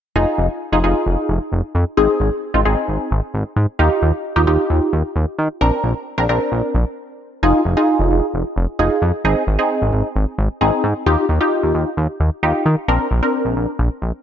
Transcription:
0.16 F1 D#4 F4 G#4
0.38 F1
0.72 F1 D#4 F4 G#4
0.84 F1 D#4 F4 G#4
1.06 F1
1.29 F1
1.52 F1
1.75 F2
1.97 G#1 C4 D#4 G#4
2.20 G#1
2.54 G#1 C4 D#4 F4
2.65 G#1 C4 D#4 G#4
2.88 G#1
3.11 G#1
3.34 G#1
3.56 G#2
3.79 D#2 D#4 F4 G4
4.02 D#2
4.36 D#2 D#4 F4 G4
4.47 D#2 D#4 F4 G4
4.70 D#2
4.93 D#2
5.16 D#2
5.38 D#3
5.61 A#1 C4 D4 A#4
5.84 A#1
6.18 A#1 C4 D4 A#4
6.29 A#1 C4 D4 A#4
6.52 A#1
6.75 A#1
7.43 F1 D#4 F4 G#4
7.65 F1
7.77 D#4 F4 G#4
8.00 F1
8.11 F1
8.34 F1
8.56 F1
8.79 F1 D#4 F4 G#4
9.02 F2
9.25 G#1 C4 D#4 G#4
9.47 G#1
9.59 C4 D#4 G#4
9.82 G#1
9.93 G#1
10.16 G#1
10.38 G#1
10.61 G#1 C4 D#4 G#4
10.84 G#2
11.06 D#2 D#4 F4 G4
11.29 D#2
11.41 D#4 F4 G4
11.63 D#2
11.75 D#2
11.97 D#2
12.20 D#2
12.43 D#2 D#4 F4 G4
12.66 D#3
12.88 A#1 C4 D4 A#4
13.11 A#1
13.23 C4 D4 A#4
13.45 A#1
13.56 A#1
13.79 A#1
14.02 A#1

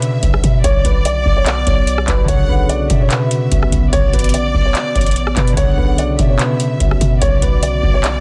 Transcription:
Already playing: B2 C#3 D3 B3 F#4 B4 E5
0.02 closed hi-hat
0.23 B1, kick, closed hi-hat
0.34 cross-stick
0.44 B2, kick, closed hi-hat
0.64 B1 C#5 D5, kick, closed hi-hat
0.85 B1 B4, kick, closed hi-hat
1.05 D5, closed hi-hat
1.26 B1, kick
1.37 C#5
1.46 D5, clap, closed hi-hat
1.67 B1 C#5, kick, closed hi-hat
1.87 closed hi-hat
1.98 cross-stick
2.08 B1 B4, kick, clap, closed hi-hat
2.24 D3
2.28 B1 B3 C#5 F#5, kick, closed hi-hat
2.33 C#3
2.49 B1 B4, kick
2.69 D5, closed hi-hat
2.90 B2 E5, kick, closed hi-hat
3.01 C#5
3.11 B4, clap, closed hi-hat
3.31 closed hi-hat
3.52 B1, kick, closed hi-hat
3.63 cross-stick
3.72 B1, kick, closed hi-hat
3.93 B1 C#5 D5, kick, closed hi-hat
4.13 A1 B4, kick, closed hi-hat
4.19 closed hi-hat
4.24 closed hi-hat
4.29 closed hi-hat
4.34 D5, closed hi-hat
4.54 B1, kick
4.65 C#5
4.75 D5, clap, closed hi-hat
4.95 A1 C#5, kick, closed hi-hat
5.01 closed hi-hat
5.06 closed hi-hat
5.11 closed hi-hat
5.16 closed hi-hat
5.27 cross-stick
5.37 B2 B4, kick, clap, closed hi-hat
5.47 closed hi-hat
5.52 D3
5.57 B1 B3 F#4 C#5 F#5, kick, closed hi-hat
5.62 C#3
5.78 B1 B4, kick
5.98 D5, closed hi-hat
6.19 B2 E5, kick, closed hi-hat
6.29 C#5
6.39 B4, clap, closed hi-hat
6.60 closed hi-hat
6.80 B1, kick, closed hi-hat
6.91 cross-stick
7.01 B2, kick, closed hi-hat
7.21 B1 C#5 D5, kick, closed hi-hat
7.42 B1 B4, kick, closed hi-hat
7.63 D5, closed hi-hat
7.83 B1, kick
7.94 C#5
8.04 D5, clap, closed hi-hat

